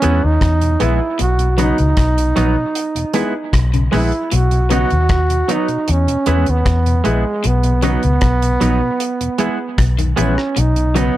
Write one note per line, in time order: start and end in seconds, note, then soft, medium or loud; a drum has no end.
0.00 0.13 E3 medium
0.00 0.21 G#3 medium
0.00 0.13 G#3 medium
0.00 0.20 B3 medium
0.00 0.21 B3 medium
0.00 0.13 B3 medium
0.00 0.26 C#4 loud
0.00 0.20 E4 medium
0.00 0.22 E4 loud
0.00 0.20 G#4 medium
0.00 0.20 B4 loud
0.00 closed hi-hat medium
0.04 0.21 E2 loud
0.24 0.40 D#2 medium
0.24 0.84 D#4 loud
0.41 0.76 E2 medium
0.41 kick loud
0.41 cross-stick loud
0.41 closed hi-hat medium
0.61 0.71 E2 medium
0.61 0.71 B2 medium
0.61 closed hi-hat medium
0.80 0.99 A#1 medium
0.80 0.90 E3 medium
0.80 0.99 G#3 medium
0.80 0.90 G#3 medium
0.80 0.98 B3 loud
0.80 0.99 B3 medium
0.80 0.91 B3 medium
0.80 0.98 E4 medium
0.80 1.00 E4 medium
0.80 1.20 E4 loud
0.80 0.98 G#4 medium
0.80 0.98 B4 medium
0.80 closed hi-hat medium
1.19 1.71 B1 medium
1.19 1.34 B2 loud
1.19 1.56 F#4 loud
1.19 closed hi-hat medium
1.39 1.49 B2 medium
1.39 closed hi-hat soft
1.57 1.73 C#3 medium
1.57 1.68 D#3 medium
1.57 1.76 F#3 medium
1.57 1.68 F#3 medium
1.57 1.75 B3 medium
1.57 1.68 B3 medium
1.57 1.77 B3 medium
1.57 1.76 D#4 medium
1.57 1.77 D#4 medium
1.57 3.63 D#4 loud
1.57 1.76 F#4 medium
1.57 1.76 B4 loud
1.57 closed hi-hat medium
1.78 1.96 C#2 medium
1.78 1.88 B2 medium
1.78 closed hi-hat soft
1.97 2.31 B1 medium
1.97 kick loud
1.97 cross-stick loud
1.97 closed hi-hat medium
2.18 2.27 B2 medium
2.18 closed hi-hat medium
2.35 2.55 A#1 medium
2.35 2.46 D#3 medium
2.35 2.46 F#3 medium
2.35 2.54 F#3 medium
2.35 2.53 B3 medium
2.35 2.46 B3 medium
2.35 2.55 B3 medium
2.35 2.54 D#4 medium
2.35 2.55 D#4 medium
2.35 2.54 F#4 medium
2.35 2.54 B4 medium
2.35 closed hi-hat medium
2.56 2.66 B2 medium
2.75 closed hi-hat medium
2.95 3.05 E2 medium
2.95 3.05 B2 medium
2.95 closed hi-hat medium
3.13 3.24 E3 medium
3.13 3.24 G#3 medium
3.13 3.32 G#3 medium
3.13 3.31 B3 medium
3.13 3.24 B3 medium
3.13 3.33 B3 medium
3.13 3.32 E4 medium
3.13 3.33 E4 loud
3.13 3.32 G#4 medium
3.13 3.32 B4 loud
3.13 closed hi-hat medium
3.53 3.87 B1 loud
3.53 kick loud
3.53 cross-stick loud
3.53 closed hi-hat medium
3.73 3.83 E2 soft
3.73 3.83 B2 medium
3.73 3.87 C#3 medium
3.73 closed hi-hat soft
3.91 4.11 A#1 medium
3.91 4.07 D#3 medium
3.91 4.02 E3 medium
3.91 4.10 G#3 medium
3.91 4.02 G#3 medium
3.91 4.09 B3 medium
3.91 4.03 B3 medium
3.91 4.11 B3 medium
3.91 4.10 E4 medium
3.91 4.11 E4 medium
3.91 4.36 E4 medium
3.91 4.10 G#4 medium
3.91 4.10 B4 medium
3.91 cross-stick medium
3.91 open hi-hat soft
4.12 closed hi-hat soft
4.31 4.84 B1 medium
4.31 4.46 B2 medium
4.31 4.72 F#4 medium
4.31 closed hi-hat medium
4.51 4.61 B2 medium
4.51 closed hi-hat soft
4.69 4.85 C#3 medium
4.69 4.80 D#3 medium
4.69 4.89 F#3 medium
4.69 4.80 F#3 medium
4.69 4.88 B3 medium
4.69 4.80 B3 medium
4.69 4.89 B3 medium
4.69 4.88 D#4 medium
4.69 4.90 D#4 medium
4.69 4.88 F#4 medium
4.69 5.53 F#4 loud
4.69 4.88 B4 loud
4.69 closed hi-hat medium
4.90 5.42 D#2 medium
4.90 5.00 B2 medium
4.90 closed hi-hat soft
5.09 kick loud
5.09 cross-stick loud
5.09 closed hi-hat medium
5.29 5.39 B2 medium
5.29 closed hi-hat medium
5.48 5.58 D#3 medium
5.48 5.58 F#3 medium
5.48 5.67 F#3 medium
5.48 5.66 B3 medium
5.48 5.58 B3 medium
5.48 5.67 B3 medium
5.48 5.66 D#4 medium
5.48 5.68 D#4 medium
5.48 5.93 D#4 medium
5.48 5.66 F#4 medium
5.48 5.66 B4 loud
5.48 closed hi-hat medium
5.68 5.78 B2 medium
5.68 closed hi-hat soft
5.88 6.06 E2 loud
5.88 6.51 C#4 loud
5.88 closed hi-hat medium
6.07 6.17 E2 medium
6.07 6.17 B2 medium
6.07 closed hi-hat medium
6.26 6.45 E2 medium
6.26 6.37 E3 medium
6.26 6.45 G#3 medium
6.26 6.37 G#3 medium
6.26 6.44 B3 medium
6.26 6.37 B3 medium
6.26 6.45 B3 medium
6.26 6.44 E4 medium
6.26 6.46 E4 medium
6.26 6.44 G#4 medium
6.26 6.45 B4 loud
6.26 closed hi-hat medium
6.46 6.64 D#2 medium
6.46 7.09 B3 medium
6.46 closed hi-hat soft
6.66 7.00 E2 medium
6.66 kick loud
6.66 cross-stick loud
6.66 closed hi-hat medium
6.86 6.95 E2 medium
6.86 6.95 B2 medium
6.86 closed hi-hat soft
7.04 7.23 A#1 medium
7.04 7.15 E3 medium
7.04 7.23 G#3 medium
7.04 7.15 G#3 medium
7.04 7.48 G#3 medium
7.04 7.22 B3 medium
7.04 7.15 B3 medium
7.04 7.23 B3 medium
7.04 7.22 E4 medium
7.04 7.24 E4 medium
7.04 7.23 G#4 medium
7.04 7.23 B4 medium
7.04 closed hi-hat medium
7.44 7.96 B1 medium
7.44 7.58 B2 loud
7.44 7.84 B3 medium
7.44 closed hi-hat medium
7.63 7.73 B2 medium
7.63 closed hi-hat soft
7.82 7.97 C#3 medium
7.82 7.93 D#3 medium
7.82 8.01 F#3 medium
7.82 7.93 F#3 medium
7.82 8.00 B3 medium
7.82 7.93 B3 medium
7.82 8.02 B3 medium
7.82 9.88 B3 loud
7.82 8.01 D#4 medium
7.82 8.02 D#4 medium
7.82 8.01 F#4 medium
7.82 8.01 B4 loud
7.82 closed hi-hat medium
8.03 8.20 C#2 medium
8.03 8.13 B2 medium
8.03 closed hi-hat soft
8.21 8.56 B1 medium
8.21 kick loud
8.21 cross-stick loud
8.21 closed hi-hat medium
8.42 8.52 B2 medium
8.42 closed hi-hat medium
8.60 8.79 A#1 loud
8.60 8.71 D#3 medium
8.60 8.79 F#3 medium
8.60 8.71 F#3 medium
8.60 8.79 B3 medium
8.60 8.71 B3 medium
8.60 8.80 B3 medium
8.60 8.79 D#4 medium
8.60 8.80 D#4 medium
8.60 8.79 F#4 medium
8.60 8.79 B4 loud
8.60 closed hi-hat medium
8.82 8.91 B2 medium
9.00 closed hi-hat medium
9.21 9.30 E2 medium
9.21 9.30 B2 medium
9.21 closed hi-hat medium
9.38 9.49 E3 medium
9.38 9.57 G#3 medium
9.38 9.49 G#3 medium
9.38 9.57 B3 medium
9.38 9.49 B3 medium
9.38 9.58 B3 loud
9.38 9.57 E4 medium
9.38 9.58 E4 loud
9.38 9.57 G#4 medium
9.38 9.57 B4 loud
9.38 closed hi-hat medium
9.78 10.13 B1 medium
9.78 kick loud
9.78 cross-stick loud
9.78 closed hi-hat loud
9.98 10.08 E2 medium
9.98 10.08 B2 medium
9.98 10.12 D#3 medium
9.98 closed hi-hat medium
10.16 10.36 A#1 medium
10.16 10.27 E3 medium
10.16 10.32 E3 medium
10.16 10.35 G#3 medium
10.16 10.27 G#3 medium
10.16 10.35 B3 loud
10.16 10.36 B3 medium
10.16 10.28 B3 medium
10.16 10.61 C#4 medium
10.16 10.35 E4 medium
10.16 10.36 E4 loud
10.16 10.35 G#4 medium
10.16 10.36 B4 loud
10.16 closed hi-hat medium
10.37 muted clean electric guitar stroke soft
10.37 cross-stick medium
10.56 11.09 B1 medium
10.56 10.71 B2 medium
10.56 11.00 D#4 medium
10.56 closed hi-hat loud
10.76 10.86 B2 medium
10.76 closed hi-hat soft
10.94 11.10 C#3 medium
10.94 11.05 D#3 medium
10.94 11.14 F#3 medium
10.94 11.05 F#3 medium
10.94 11.05 B3 medium
10.94 11.13 B3 medium
10.94 11.14 B3 medium
10.94 11.17 B3 medium
10.94 11.13 D#4 medium
10.94 11.15 D#4 medium
10.94 11.13 F#4 medium
10.94 11.14 B4 loud
10.94 closed hi-hat medium